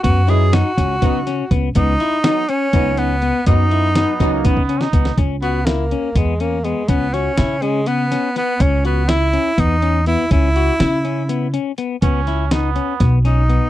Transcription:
<<
  \new Staff \with { instrumentName = "Clean electric guitar" } { \time 7/8 \key cis \dorian \tempo 4 = 123 b8 e'8 dis'8 cis'8 b8 cis'8 b8 | b8 e'8 dis'8 cis'8 b8 cis'8 b8 | b8 e'8 dis'8 cis'8 b8 cis'8 b8 | cis'8 fis'8 e'8 cis'8 b8 cis'8 b8 |
cis'8 fis'8 e'8 cis'8 b8 cis'8 b8 | cis'8 fis'8 e'8 cis'8 b8 cis'8 b8 | cis'8 fis'8 e'8 cis'8 b8 cis'8 b8 | b8 e'8 dis'8 cis'8 b8 cis'8 b8 | }
  \new Staff \with { instrumentName = "Tenor saxophone" } { \time 7/8 \key cis \dorian fis'8 gis'8 fis'2 r8 | dis'4. cis'4 b4 | dis'2~ dis'8 r4 | r8 b8 ais4 gis8 ais8 gis8 |
b8 cis'4 gis8 b4 b8 | cis'8 b8 e'4 dis'4 e'8 | e'2~ e'8 r4 | r2 r8 dis'4 | }
  \new Staff \with { instrumentName = "Hollow-body jazz guitar" } { \time 7/8 \key cis \dorian r8 <fis b dis'>8 r4 <fis b dis'>8 r4 | r4 <fis b dis'>8 r8 <fis b dis'>8 r4 | <fis b dis'>4. <fis b dis'>8 r4. | r2. r8 |
r2. r8 | r2. r8 | r2. r8 | r2. r8 | }
  \new Staff \with { instrumentName = "Trombone" } { \time 7/8 \key cis \dorian r2. r8 | r2. r8 | r4 b8. ais16 b8. dis'8. | r2. r8 |
r2. r8 | r2. r8 | r2. r8 | cis'4 b4~ b16 r4 r16 | }
  \new Staff \with { instrumentName = "Upright bass" } { \clef bass \time 7/8 \key cis \dorian fis,4. cis,8 cis4 cis,8 | cis,8 r4. cis,4. | fis,4. cis,8 cis4 cis,8 | cis,2 e,4. |
cis,4 cis2 r8 | cis,2 e,4. | cis,4 cis2 r8 | cis,2 b,,4. | }
  \new DrumStaff \with { instrumentName = "Drums" } \drummode { \time 7/8 <hh bd>8 hh8 <hh sn>8 <hh bd>8 <hh bd>8 <hh sn>8 <hh bd>8 | <hh bd>8 <hh sn>8 <hh sn>8 hh8 <hh bd>8 hh8 hh8 | <hh bd>8 hh8 <hh sn>8 <hh bd sn>8 <hh bd>16 bd16 hh16 sn16 <hh bd>16 sn16 | <hh bd>8 hh8 <hh sn>8 hh8 <hh bd>8 hh8 hh8 |
<hh bd>8 <hh sn>8 <hh sn>8 hh8 hh8 <hh sn>8 <hh sn>8 | <hh bd>8 hh8 <hh sn>8 hh8 <hh bd>8 hh8 hh8 | <hh bd>8 hh8 <hh sn>8 hh8 hh8 hh8 hh8 | <hh bd>8 <hh sn>8 <hh sn>8 hh8 <hh bd sn>8 <hh sn>8 hh8 | }
>>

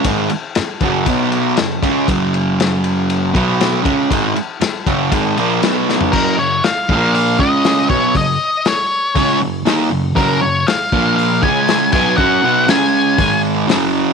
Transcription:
<<
  \new Staff \with { instrumentName = "Lead electric guitar" } { \time 4/4 \key fis \major \tempo 4 = 119 r1 | r1 | r1 | ais'8 cis''8 eis''4 eis''8 dis''4 cis''8 |
dis''4 cis''4. r4. | ais'8 cis''8 eis''4 eis''8 gis''4 gis''8 | fis''4 gis''4. r4. | }
  \new Staff \with { instrumentName = "Distorted electric guitar" } { \clef bass \time 4/4 \key fis \major <gis, dis gis>8 r4 <fis, cis fis>8 <b, fis b>4 <fis, cis>8 <cis gis cis'>8 | <fis, cis fis>2~ <fis, cis fis>8 <b, fis b>4 <cis gis cis'>8 | <gis, dis gis>8 r4 <fis, cis fis>8 <gis, dis gis>8 <ais, eis ais>8 <b, fis b>4 | <fis, cis fis>8 <fis, cis>8 r8 <ais, eis ais>4 <cis gis cis'>4 <b, fis b>8 |
<fis, cis>8 r4. <cis gis cis'>8 <fis, cis>8 <dis ais dis'>8 <fis, cis>8 | <fis, cis fis>8 <fis, cis>8 r8 <ais, eis ais>4 <cis gis cis'>4 <b, fis b>8 | <fis cis' fis'>8 <b, fis b>8 <cis gis cis'>4 <gis, dis gis>4 <fis, cis fis>4 | }
  \new DrumStaff \with { instrumentName = "Drums" } \drummode { \time 4/4 <bd cymr>8 cymr8 <cymr sn>8 <bd cymr>8 <bd cymr>8 cymr8 <cymr sn>8 <bd cymr>8 | <bd cymr>8 cymr8 <cymr sn>8 cymr8 cymr8 <bd cymr>8 <cymr sn>8 <bd cymr>8 | <bd cymr>8 cymr8 <cymr sn>8 <bd cymr>8 <bd cymr>8 cymr8 <cymr sn>8 sn16 tomfh16 | <cymc bd>4 <hho sn>8 bd8 hho8 bd8 <hho sn>8 bd8 |
<hho bd>4 <hho sn>4 <hho bd>4 <hho sn>4 | <hho bd>4 <hho sn>8 bd8 hho8 bd8 <hho sn>8 <cymc bd>8 | bd4 <hho sn>4 <hho bd>4 <hho sn>4 | }
>>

